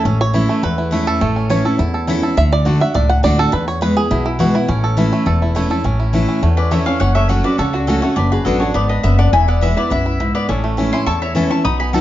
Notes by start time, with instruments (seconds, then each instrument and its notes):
Already playing: five-string banjo E4 A4
0.05 upright bass A1, steel-string acoustic guitar A2, five-string banjo C#4
0.21 five-string banjo C#5
0.34 steel-string acoustic guitar E3 A3 C#4 E4, five-string banjo E4
0.49 five-string banjo A3
0.63 steel-string acoustic guitar E2, upright bass E2, five-string banjo B4
0.78 five-string banjo E4
0.91 steel-string acoustic guitar E3 A3 C#4 E4, five-string banjo A3
1.07 five-string banjo A4
1.21 upright bass A1, steel-string acoustic guitar A2, five-string banjo A3
1.36 five-string banjo C#4
1.50 steel-string acoustic guitar E3 A3 C#4 E4, five-string banjo C#5
1.65 steel-string acoustic guitar C#4 E4, five-string banjo A4
1.79 steel-string acoustic guitar E2, upright bass E2, five-string banjo E4
1.94 five-string banjo A4
2.07 steel-string acoustic guitar E3 A3 C#4 E4, five-string banjo E4
2.22 steel-string acoustic guitar C#4 E4, five-string banjo A4
2.37 upright bass D2, steel-string acoustic guitar D3, five-string banjo E5
2.52 five-string banjo D5
2.65 steel-string acoustic guitar D3 A3 D4 F#4, five-string banjo F#4
2.80 steel-string acoustic guitar D4 F#4, five-string banjo E5
2.94 upright bass C#2, steel-string acoustic guitar A2, five-string banjo D5
3.09 five-string banjo F#5
3.23 upright bass D2, steel-string acoustic guitar D3 A3 D4 F#4, five-string banjo D5
3.38 steel-string acoustic guitar D4 F#4, five-string banjo A4
3.52 steel-string acoustic guitar E2, upright bass E2, five-string banjo B4
3.68 five-string banjo C#5
3.81 steel-string acoustic guitar E3 G#3 B3 E4, five-string banjo B4
3.96 steel-string acoustic guitar B3 E4, five-string banjo G#4
4.11 upright bass B1, steel-string acoustic guitar B2, five-string banjo E4
4.26 five-string banjo E4
4.39 steel-string acoustic guitar E3 G#3 B3 E4, five-string banjo F#4
4.54 steel-string acoustic guitar B3 E4, five-string banjo E4
4.68 upright bass A1, steel-string acoustic guitar A2, five-string banjo C#4
4.84 five-string banjo A4
4.97 steel-string acoustic guitar E3 A3 C#4 E4, five-string banjo E4
5.13 five-string banjo A3
5.26 upright bass E1, steel-string acoustic guitar E2, five-string banjo A4
5.42 five-string banjo E4
5.55 steel-string acoustic guitar E3 A3 C#4 E4, five-string banjo A3
5.70 steel-string acoustic guitar C#4 E4, five-string banjo A4
5.84 upright bass A1, steel-string acoustic guitar A2, five-string banjo C#4
6.00 five-string banjo E4
6.13 steel-string acoustic guitar E3 A3 C#4 E4, five-string banjo A3
6.29 five-string banjo C#4
6.43 upright bass E2, steel-string acoustic guitar E2, five-string banjo A3
6.57 five-string banjo C#4, resonator guitar played with a steel bar B4, mandolin D5
6.71 steel-string acoustic guitar E3 A3 C#4 E4, five-string banjo A3, resonator guitar played with a steel bar C#5, mandolin E5
6.86 five-string banjo C#4, steel-string acoustic guitar C#4 E4, resonator guitar played with a steel bar C#5, mandolin F5
7.00 upright bass F#1, steel-string acoustic guitar F#2, five-string banjo C#4, resonator guitar played with a steel bar C#5, mandolin F#5
7.15 five-string banjo A3, resonator guitar played with a steel bar C#5, mandolin E5
7.29 steel-string acoustic guitar F#3 A3 C#4 F#4, five-string banjo C#4, resonator guitar played with a steel bar C#5, mandolin F#5
7.44 steel-string acoustic guitar C#4 F#4, five-string banjo F#4, resonator guitar played with a steel bar B4, mandolin D5
7.58 upright bass C#2, steel-string acoustic guitar C#3, five-string banjo A4, resonator guitar played with a steel bar A4, mandolin C#5
7.73 resonator guitar played with a steel bar D4, mandolin F#4, five-string banjo F#4
7.87 steel-string acoustic guitar F#3 A3 C#4 F#4, five-string banjo C#4, resonator guitar played with a steel bar F#4, mandolin A4
8.02 five-string banjo A3, steel-string acoustic guitar C#4 F#4, resonator guitar played with a steel bar A4, mandolin C#5
8.16 upright bass F#1, steel-string acoustic guitar F#2, five-string banjo D4, resonator guitar played with a steel bar B4, mandolin D5
8.32 five-string banjo F#4, resonator guitar played with a steel bar G#4, mandolin B4
8.45 upright bass A1, steel-string acoustic guitar F#3 B3 D4 F#4, five-string banjo B3, resonator guitar played with a steel bar F#4, mandolin A4
8.60 five-string banjo D4, steel-string acoustic guitar D4 F#4, resonator guitar played with a steel bar A4, mandolin C#5
8.74 upright bass G#1, steel-string acoustic guitar G#2, five-string banjo B3, resonator guitar played with a steel bar B4, mandolin D5
8.89 five-string banjo D4, resonator guitar played with a steel bar B4, mandolin D#5
9.03 upright bass F#1, steel-string acoustic guitar F#2, five-string banjo B3, resonator guitar played with a steel bar B4, mandolin E5
9.19 five-string banjo D4, resonator guitar played with a steel bar D5, mandolin F#5
9.33 upright bass E1, steel-string acoustic guitar E2, five-string banjo E4, resonator guitar played with a steel bar E5, mandolin G#5
9.48 five-string banjo B3, resonator guitar played with a steel bar D5, mandolin F#5
9.61 steel-string acoustic guitar E3 G#3 B3 E4, five-string banjo E4, resonator guitar played with a steel bar B4, mandolin E5
9.76 steel-string acoustic guitar B3 E4, five-string banjo E4, resonator guitar played with a steel bar B4, mandolin D5
9.90 upright bass B1, steel-string acoustic guitar F#2, five-string banjo E4, resonator guitar played with a steel bar B4, mandolin E5
10.06 five-string banjo E4
10.20 steel-string acoustic guitar G#2, five-string banjo E4
10.35 five-string banjo B3, resonator guitar played with a steel bar B4, mandolin D5
10.49 upright bass A1, steel-string acoustic guitar A2, five-string banjo C#4, resonator guitar played with a steel bar A4, mandolin C#5
10.64 five-string banjo A3
10.77 steel-string acoustic guitar E3 A3 C#4 E4, five-string banjo C#4
10.92 steel-string acoustic guitar C#4 E4, five-string banjo E4, resonator guitar played with a steel bar G#5, mandolin C6
11.06 upright bass E2, steel-string acoustic guitar E2, five-string banjo A4, resonator guitar played with a steel bar A5, mandolin C#6
11.22 five-string banjo E4, resonator guitar played with a steel bar C#5, mandolin E5
11.35 steel-string acoustic guitar E3 A3 C#4 E4, five-string banjo C#4, resonator guitar played with a steel bar E5, mandolin A5
11.50 five-string banjo A3, steel-string acoustic guitar C#4 E4, resonator guitar played with a steel bar A5, mandolin C#6
11.65 upright bass B1, steel-string acoustic guitar B2, five-string banjo D#4, resonator guitar played with a steel bar B5, mandolin D#6
11.80 five-string banjo B3, resonator guitar played with a steel bar G#5, mandolin B5
11.93 steel-string acoustic guitar F#3 B3 D#4 F#4, five-string banjo A4, resonator guitar played with a steel bar F#5, mandolin A5